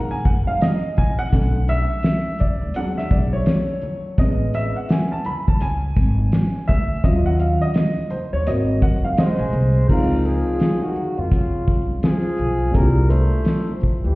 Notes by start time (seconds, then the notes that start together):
Already playing: A#1 D#3 G#3 A#3 A#5
0.11 G#5, shaker
0.25 F#1 F#5, kick, shaker
0.47 F5, high conga, shaker
0.61 D#5, snare, closed hi-hat, low conga, shaker
0.84 shaker
0.96 A#1 G#5, kick, low conga, shaker
1.19 F#5
1.32 B1 D3 A3 C#4, kick, closed hi-hat, shaker
1.55 shaker
1.68 E5, closed hi-hat, shaker
1.91 shaker
2.03 snare, closed hi-hat, shaker
2.26 high conga, shaker
2.39 D5, closed hi-hat, low conga, shaker
2.40 kick, shaker
2.61 D2, high conga, shaker
2.74 E2 F#3 G#3 D4 F#5, closed hi-hat, shaker
2.98 E5, snare, shaker
3.10 B1 D5, kick, shaker
3.33 C#5, high conga, shaker
3.46 snare, closed hi-hat, low conga, shaker
3.70 shaker
3.81 low conga, shaker
3.83 shaker
4.06 shaker
4.18 A1 G#3 B3 C#4 D#5, kick, closed hi-hat, shaker
4.42 shaker
4.54 E5, closed hi-hat, shaker
4.76 F#5, shaker
4.89 G#5, snare, closed hi-hat
5.12 A5, high conga, shaker
5.24 B5, closed hi-hat, low conga, shaker
5.26 shaker
5.47 C#2 A5, kick, high conga, shaker
5.60 G#5, closed hi-hat, shaker
5.83 shaker
5.96 G#1, kick, shaker
6.18 high conga, shaker
6.32 snare, closed hi-hat, low conga, shaker
6.55 shaker
6.67 D2 E5, kick, low conga, shaker
6.90 shaker
7.04 D#2 F#3 C#4 F4 D#5, kick, closed hi-hat
7.26 F#5, shaker
7.39 F5, closed hi-hat, shaker
7.62 D#5, shaker
7.74 snare, closed hi-hat, shaker
7.98 high conga, shaker
8.10 C5, closed hi-hat, low conga, shaker
8.12 shaker
8.33 D#2 C#5, high conga, shaker
8.46 G#1 A#3 C4 F#4 D#5, closed hi-hat, shaker
8.69 shaker
8.82 F#1 F#5, kick, shaker
9.05 F5, high conga, shaker
9.18 G#3 C5 D#5, snare, closed hi-hat, low conga, shaker
9.39 A#1 G#5, shaker
9.52 C2, low conga, shaker
9.76 shaker
9.86 F3 G#3 C4 A#4, kick, crash, shaker
9.91 D#4 F5
10.11 shaker
10.25 F3 G#4, shaker
10.47 shaker
10.60 snare, closed hi-hat
10.82 D#3 F#4, high conga, shaker
10.96 low conga, shaker
11.18 F2 C#3 F4, high conga, shaker
11.31 kick, closed hi-hat, shaker
11.54 shaker
11.67 C2, kick, shaker
11.89 high conga, shaker
12.03 F3 G#4, snare, closed hi-hat, low conga, shaker
12.26 high conga, shaker
12.37 B1, low conga, shaker
12.61 shaker
12.71 A#2 G3 D4 A#4, kick, closed hi-hat
12.75 C2 E4 G4, shaker
12.96 shaker
13.10 A3 C5, closed hi-hat, shaker
13.33 shaker
13.45 snare, closed hi-hat
13.68 high conga, shaker
13.80 kick, low conga, shaker
14.04 D2 E3 G4, high conga, shaker